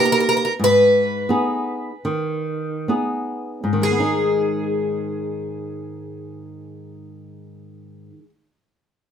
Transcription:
0.00 0.47 A#3 soft
0.00 0.47 D#4 soft
0.00 0.48 G4 medium
0.05 0.11 A#4 medium
0.12 0.19 A#4 medium
0.20 0.28 A#4 medium
0.29 0.36 A#4 medium
0.37 0.44 A#4 medium
0.45 0.52 A#4 medium
0.59 1.27 G#2 medium
0.64 2.87 B4 medium
1.29 1.89 B3 medium
1.29 1.90 D#4 soft
1.29 1.90 G#4 medium
2.05 2.87 D#3 medium
2.88 3.63 B3 soft
2.88 3.64 D#4 soft
2.88 3.64 G#4 soft
3.64 8.10 G#2 medium
3.73 8.19 D#3 soft
3.82 8.28 G#3 soft
3.82 8.29 G#4 medium
3.91 4.00 B3 soft
4.00 8.46 D#4 medium

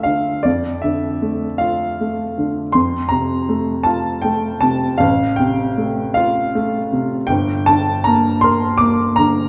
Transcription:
0.00 0.40 D2 medium
0.00 0.06 D3 soft
0.00 0.47 A3 soft
0.00 0.47 F4 soft
0.00 0.47 E5 medium
0.00 0.03 F5 medium
0.00 0.44 F5 medium
0.00 0.47 G5 medium
0.06 0.45 D3 soft
0.43 2.71 F2 medium
0.43 0.83 D5 medium
0.82 1.46 D3 soft
0.82 1.60 E5 medium
1.22 1.85 A3 soft
1.58 2.23 F4 soft
1.58 2.73 F5 medium
2.01 2.61 A3 soft
2.38 2.75 D3 soft
2.72 4.97 F2 medium
2.72 3.11 C6 medium
3.09 3.72 C3 soft
3.09 3.86 A#5 medium
3.49 4.10 A3 soft
3.83 4.47 F4 medium
3.83 4.23 A5 medium
4.22 4.86 A3 soft
4.22 4.61 G5 medium
4.61 5.01 C3 soft
4.61 5.00 A5 medium
4.98 7.25 A1 medium
4.98 5.38 F5 medium
5.36 6.01 C3 medium
5.36 6.15 G5 medium
5.78 6.40 A3 soft
6.14 6.77 F4 medium
6.14 6.54 F5 medium
6.55 7.14 A3 soft
6.93 7.30 C3 soft
7.27 9.49 G1 medium
7.27 7.67 G5 medium
7.66 8.29 D3 medium
7.66 8.05 A5 medium
8.04 8.66 A#3 medium
8.04 8.42 A#5 medium
8.41 9.03 A#4 medium
8.41 8.79 C6 medium
8.78 9.41 A#3 medium
8.78 9.16 D6 medium
9.16 9.49 D3 soft
9.16 9.49 A#5 medium

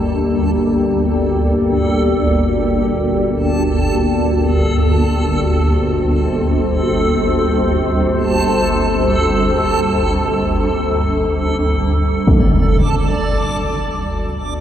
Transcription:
0.00 12.25 G1 medium
0.00 12.26 D2 medium
0.00 12.28 A#3 medium
0.00 12.27 G4 medium
0.00 12.28 A4 medium
0.00 4.77 D5 medium
4.42 12.27 C5 medium
12.25 14.61 G1 medium
12.25 14.61 D2 medium
12.25 14.61 D5 medium
12.25 impact medium

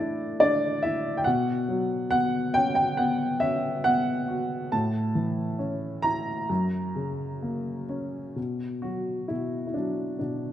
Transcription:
0.00 1.21 A2 medium
0.00 1.27 E3 medium
0.00 0.41 D4 medium
0.00 0.85 E4 medium
0.00 1.27 A4 medium
0.00 0.39 D5 medium
0.40 1.23 D4 medium
0.40 0.84 D5 medium
0.83 1.25 E4 medium
0.83 1.19 E5 medium
1.17 1.25 G5 medium
1.24 4.69 B2 medium
1.24 2.06 F#5 medium
1.69 3.38 F#3 medium
2.11 2.97 B3 soft
2.11 2.51 F#5 loud
2.54 3.40 C#4 medium
2.54 2.74 G5 loud
2.75 2.96 G5 medium
2.97 3.83 B3 medium
2.97 3.42 F#5 medium
3.40 4.68 C#4 soft
3.40 3.81 E5 medium
3.84 4.69 B3 medium
3.84 4.74 F#5 loud
4.28 4.70 F#4 soft
4.72 6.46 A2 medium
4.72 5.56 A5 medium
5.15 6.46 E3 soft
5.59 6.47 C#4 soft
6.02 6.48 E4 soft
6.02 7.85 A#5 medium
6.49 8.33 F#2 medium
6.95 8.33 C#3 soft
7.42 8.34 A#3 soft
7.89 8.35 C#4 soft
8.36 9.29 B2 soft
8.82 9.75 F#3 soft
8.82 9.26 F#4 medium
9.28 10.19 B2 soft
9.28 9.65 E4 soft
9.67 9.75 E4 soft
9.74 10.53 F#3 soft
9.74 10.18 D4 soft
10.19 10.53 B2 soft
10.19 10.53 D4 soft

